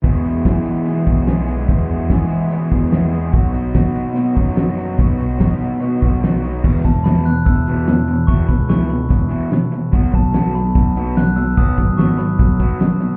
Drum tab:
CC |----------------|----------------|----------------|----------------|
HH |x-x-x-x-x-x-x-x-|x-x-x-x-x-x-x-x-|x-x-x-x-x-x-x-x-|x-x-x-x-x-x-x-x-|
SD |----o-------o---|----o-------o---|----o------oo---|----o-------o---|
BD |o---o-----o-----|o---o-----o-----|o---o-----o-----|o---o-----o-----|

CC |x---------------|----------------|----------------|----------------|
HH |--x-x-x-x-x-x-x-|x-x-x-x-x-x-x-x-|x-x-x-x-x-x-x-x-|x-x-x-x-x-x-x-x-|
SD |----o-------o---|----o-------o---|----o-------o---|----o-------o---|
BD |o-o-----o-------|o-o-----o-------|o-o-----o-------|o-o-----o-o-----|